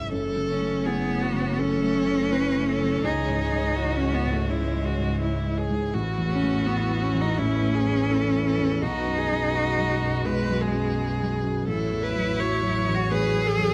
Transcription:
0.00 0.14 G#2 soft
0.00 0.13 G#3 soft
0.00 0.14 C#4 soft
0.00 0.14 E4 soft
0.00 0.11 E5 medium
0.11 3.05 F#1 medium
0.11 1.54 F#2 medium
0.11 5.89 E3 medium
0.11 2.99 A3 medium
0.11 0.87 A4 medium
0.11 5.89 C#5 medium
0.36 0.75 C#3 soft
0.49 0.87 C#4 medium
0.61 1.00 A3 soft
0.85 1.61 B3 medium
0.85 1.24 E4 medium
0.85 1.24 G#4 medium
1.09 1.48 A3 medium
1.22 1.60 F#4 medium
1.34 1.73 C#3 medium
1.58 2.99 F#2 medium
1.58 3.03 C#4 loud
1.58 2.33 A4 medium
1.83 2.21 A3 medium
2.06 2.45 C#3 soft
2.31 2.69 E4 medium
2.31 2.67 B4 medium
2.55 2.93 A3 soft
2.68 3.06 A4 medium
2.79 3.03 C#3 soft
3.03 5.94 C#2 medium
3.03 4.44 C#2 medium
3.03 5.93 G#3 medium
3.03 3.98 D#4 medium
3.03 3.40 G#4 medium
3.28 3.66 G#2 soft
3.41 3.78 G#4 medium
3.53 3.91 G#3 soft
3.76 4.15 E4 soft
3.76 4.51 F#4 medium
3.96 4.16 C#4 medium
4.01 4.39 G#3 medium
4.14 4.34 B3 medium
4.26 4.64 G#2 soft
4.33 4.52 A3 medium
4.49 5.90 C#2 medium
4.49 5.58 G#3 medium
4.49 4.86 E4 medium
4.74 5.12 G#3 medium
4.85 5.20 F#4 medium
4.98 5.36 G#2 soft
5.21 5.59 E4 medium
5.21 5.60 E4 medium
5.46 5.84 G#3 soft
5.58 5.95 G#4 medium
5.70 5.94 G#2 soft
5.93 8.82 A1 medium
5.93 7.34 A1 medium
5.93 8.81 A3 medium
5.93 8.77 E4 medium
5.93 7.40 F#4 medium
5.93 11.67 B4 medium
6.18 6.56 E2 soft
6.31 6.68 C#4 medium
6.43 6.80 A3 soft
6.66 7.04 B3 medium
6.66 7.04 E4 medium
6.91 7.29 A3 soft
7.02 7.22 C#4 medium
7.15 7.52 E2 medium
7.21 7.39 D#4 medium
7.37 8.78 A1 medium
7.37 8.83 C#4 loud
7.37 7.76 E4 medium
7.62 8.00 A3 medium
7.74 8.11 G#4 medium
7.87 8.25 E2 medium
8.10 8.48 E4 medium
8.10 8.45 A4 medium
8.34 8.72 A3 soft
8.46 8.84 A4 medium
8.58 8.82 E2 soft
8.81 11.69 B1 medium
8.81 10.21 B1 medium
8.81 11.67 G#3 medium
8.81 10.25 D#4 loud
8.81 11.67 F#4 medium
8.81 9.19 F#4 medium
9.05 9.44 F#2 soft
9.18 9.56 G#4 medium
9.30 9.68 F#3 soft
9.53 10.26 F#4 medium
9.53 9.91 G#4 medium
9.77 10.15 F#3 soft
10.01 10.39 F#2 soft
10.25 11.63 B1 medium
10.25 11.30 G#3 medium
10.25 10.62 B4 medium
10.48 10.87 F#3 medium
10.61 11.67 G#4 medium
10.73 11.11 F#2 soft
10.96 11.34 G#4 medium
11.20 11.58 F#3 soft
11.44 11.67 F#2 medium
11.67 13.74 A1 medium
11.67 13.07 A1 medium
11.67 13.74 F#3 medium
11.67 12.96 E4 medium
11.67 13.74 F#4 medium
11.67 12.04 A4 medium
11.67 13.74 C#5 medium
11.91 12.29 E2 medium
12.03 12.41 B4 medium
12.15 12.53 F#3 soft
12.40 12.78 F#4 medium
12.40 13.13 C#5 medium
12.63 13.01 F#3 medium
12.88 13.26 E2 medium
12.95 13.11 F#4 medium
13.11 13.74 A1 medium
13.11 13.74 G#4 loud
13.11 13.48 B4 medium
13.36 13.74 F#3 medium
13.46 13.74 A4 medium
13.59 13.74 E2 medium

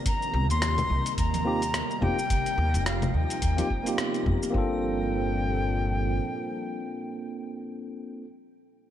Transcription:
0.00 4.50 C3 medium
0.00 4.51 A#3 medium
0.00 4.56 A#4 medium
0.00 4.55 A#5 medium
0.06 0.15 D#2 medium
0.06 2.00 D#3 medium
0.06 4.50 G3 medium
0.06 2.00 D#4 loud
0.06 0.48 A#5 loud
0.06 kick loud
0.06 closed hi-hat medium
0.06 shaker medium
0.22 shaker soft
0.34 0.50 C2 loud
0.34 high conga medium
0.50 0.82 D#2 loud
0.50 1.14 C6 loud
0.50 closed hi-hat soft
0.50 shaker medium
0.62 cross-stick loud
0.62 closed hi-hat medium
0.62 shaker medium
0.78 closed hi-hat soft
0.78 low conga medium
0.78 shaker soft
0.90 1.00 C2 medium
1.06 closed hi-hat soft
1.06 shaker medium
1.18 1.80 D#2 medium
1.18 2.04 A#5 loud
1.18 kick loud
1.18 closed hi-hat medium
1.18 shaker medium
1.34 closed hi-hat soft
1.34 low conga medium
1.34 shaker soft
1.44 1.60 A#3 loud
1.44 1.60 C4 medium
1.44 1.61 D#4 medium
1.44 1.61 F4 medium
1.44 1.61 G4 loud
1.62 closed hi-hat soft
1.62 shaker medium
1.74 cross-stick medium
1.74 closed hi-hat medium
1.74 high conga medium
1.74 shaker medium
1.91 shaker soft
2.01 2.12 F2 medium
2.01 4.52 F3 medium
2.01 2.16 A#3 medium
2.01 2.17 C4 medium
2.01 2.17 D#4 medium
2.01 4.52 D#4 medium
2.01 2.17 F4 medium
2.01 2.18 G4 loud
2.01 2.86 G5 loud
2.01 kick medium
2.01 high conga medium
2.01 low conga medium
2.19 shaker medium
2.30 2.40 F1 loud
2.30 kick loud
2.30 closed hi-hat medium
2.30 shaker medium
2.46 closed hi-hat soft
2.46 shaker soft
2.58 2.76 D#2 loud
2.58 high conga medium
2.74 3.07 F1 loud
2.74 closed hi-hat soft
2.74 shaker medium
2.86 3.16 F5 medium
2.86 cross-stick loud
2.86 closed hi-hat medium
2.86 shaker medium
3.02 closed hi-hat soft
3.02 low conga medium
3.02 shaker soft
3.14 3.24 D#2 medium
3.14 4.27 G5 loud
3.30 closed hi-hat soft
3.30 shaker medium
3.42 3.61 D#2 loud
3.42 kick loud
3.42 closed hi-hat medium
3.42 shaker medium
3.57 3.67 A#3 medium
3.57 3.67 C4 medium
3.57 3.67 D#4 medium
3.57 3.67 F4 medium
3.57 3.68 G4 loud
3.57 closed hi-hat soft
3.57 low conga medium
3.57 shaker soft
3.70 3.80 F1 medium
3.70 kick medium
3.84 4.49 A#3 medium
3.84 4.51 C4 medium
3.84 4.53 D#4 medium
3.84 4.53 F4 medium
3.84 closed hi-hat soft
3.84 shaker medium
3.89 4.54 G4 loud
3.98 cross-stick loud
3.98 closed hi-hat medium
3.98 high conga medium
3.98 shaker medium
4.14 closed hi-hat soft
4.14 shaker soft
4.26 4.36 F2 loud
4.26 kick loud
4.26 high conga medium
4.26 low conga medium
4.43 shaker medium
4.50 6.18 G1 medium
4.50 7.54 A#2 medium
4.50 7.54 F3 medium
4.50 7.54 G3 medium
4.50 8.23 A#3 medium
4.50 8.23 C4 medium
4.50 7.54 C4 loud
4.50 8.24 D4 medium
4.50 7.54 A4 medium
4.50 kick loud
4.55 8.25 F4 medium
4.55 8.26 A4 loud
4.55 7.55 G5 loud

